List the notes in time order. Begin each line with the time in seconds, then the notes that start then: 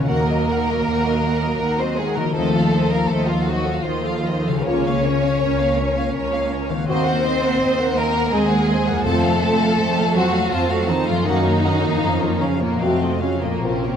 Already playing: D#3 A#3
0.00 F#4 A#4
0.07 D#2 D#3 A#3 F#4 A#4 F#5
0.28 F#3 F#4 D#5
0.49 D#3 A#4 F#5
0.67 F#3 F#4 D#5
0.85 D#2 D#3 A#4 F#5
1.06 F#3 F#4 D#5
1.25 D#3 A#4 F#5
1.42 F#3 F#4 D#5
1.60 D#2 D#3 A#4 F#5
1.79 F#3 C4 F#4 C5 D#5
1.97 D#3 G#3 G#4 A#4 F#5
2.16 D#3 F#3 A#3 F#4 A#4 D#5
2.21 F3
2.25 F4
2.30 C5
2.34 D#2 D#3 A3 C4 F4 A4 C5 D#5
2.53 F3 A4 F5
2.74 D#3 C5 D#5
2.90 F3 A#3 A4 A#4 F5
3.07 D#2 A3 A4 C5
3.11 D#3 D#5
3.26 F3 F4 A4 F5
3.44 F#3 F#4
3.48 D#3 C5 D#5
3.65 F3 A4
3.70 F5
3.82 D#2 D#3 F3 F4 C5
3.86 D#5
4.03 F3 A4 F5
4.23 D#3 C5 D#5
4.44 C#3 F3 A4 F5
4.52 A#3
4.56 F4
4.61 C#4 A#4 C#5
4.65 C#2 A#3 C#4 F4 C#5
4.85 A#3 C#5 F5
5.04 C#4 A#4 C#5
5.22 A#3 C#5 F5
5.41 C#2 C#4 A#4 C#5
5.59 A#3 C#5 F5
5.77 C#4 A#4 C#5
5.94 A#3 C#5 F5
6.13 C#2 C#4 A#4 C#5
6.32 A#3 C#5 F5
6.49 C#4 A#4 C#5
6.68 D#3 A#3 C#5 F5
6.74 C4
6.79 F#4
6.83 A#4
6.88 D#2 A#3 C4 F#4 C5 D#5
7.05 A#3 A#4 F#5
7.25 C4 C5 D#5
7.43 A#3 A#4 F#5
7.60 D#2 C4 C5 D#5
7.78 A#3 A#4 F#5
7.95 A#3 C4 A#4 C5 D#5
8.14 A#3 A#4 F#5
8.30 D#2 G#3 C4 G#4 C5 D#5
8.48 A#3 A#4 F#5
8.68 C4 C5 D#5
8.87 F2 A#3 A#4 F#5
8.92 C4
8.97 F4
9.01 F2 A4
9.05 F2 A3 C4 F4 C5 A5
9.23 A3 A4 F5
9.42 C4 C5 A5
9.60 A3 A4 F5
9.78 F2 C4 C5 A5
9.97 A3 A4 F5
10.15 F#3 C4 F#4 C5 A5
10.33 A3 A4 F5
10.51 F2 F3 C4 F4 C5 A5
10.69 F#3 A3 F#4 A4 F5
10.87 D#3 C4 D#4 C5 A5
11.05 F3 A3 F4 A4 F5
11.09 F#2 A#3
11.18 C#4
11.23 F#2 C#4 D#4 A#4 F#5
11.27 D#3 A#3 F#4
11.43 A#3 F#4 C#5
11.61 C#4 A#4 F#5
11.81 A#3 F#4 C#5
11.85 F2
11.90 A#3
11.94 F4
11.99 F2 C#4 F4 A#4 F5
12.04 A#3
12.20 A#3 F4 C#5
12.39 C#3 C#4 A#4 F5
12.58 A#3 F4 C#5
12.62 F2 A#2 A#3
12.68 A3
12.72 F#4
12.77 F2 D#5 F5
12.81 C3 F#3 A3 C4 F#4
13.00 A3 F4 D#5
13.20 C#3 F#3 C#4 F#4 F5
13.41 A#2 A3 A#3 F4 D#5
13.49 A#3
13.53 F4
13.58 A#1 C#5
13.62 C3 A#3 C4 C#4 F4 A#4
13.83 A#3 C#4 C#5